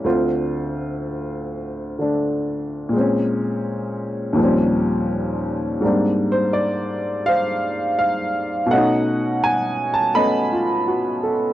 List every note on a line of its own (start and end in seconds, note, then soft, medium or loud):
0.04 2.93 D2 soft
0.04 1.97 D3 soft
0.04 2.94 C4 soft
0.04 2.94 F4 medium
1.99 2.93 D3 soft
1.99 2.94 A3 soft
1.99 2.95 D4 soft
2.89 4.34 A#2 soft
2.89 4.37 G#3 soft
2.96 4.39 C4 soft
2.96 4.41 C#4 medium
4.33 5.80 D#2 soft
4.33 5.81 A#2 soft
4.37 5.82 F3 soft
4.37 5.80 G3 soft
4.42 5.83 C4 soft
4.42 5.85 C#4 medium
5.81 8.70 G#2 soft
5.81 8.70 G3 soft
5.81 8.71 A#3 soft
5.81 8.72 C4 soft
5.86 8.72 D4 soft
6.32 6.37 C5 medium
6.53 7.28 D5 medium
7.26 8.67 C5 medium
7.26 7.97 F5 medium
7.99 8.73 F5 medium
8.66 11.53 B2 medium
8.66 10.13 A3 soft
8.71 10.16 C#4 soft
8.71 10.12 D#5 medium
8.71 9.39 F#5 medium
8.77 11.53 D#4 medium
9.44 9.89 G#5 medium
9.94 9.99 A5 medium
10.15 11.53 A3 soft
10.15 11.53 B3 soft
10.15 11.53 C#4 soft
10.15 11.53 D#5 medium
10.15 11.32 B5 medium
10.52 11.02 F4 soft
10.88 11.44 F#4 soft
11.23 11.53 A4 soft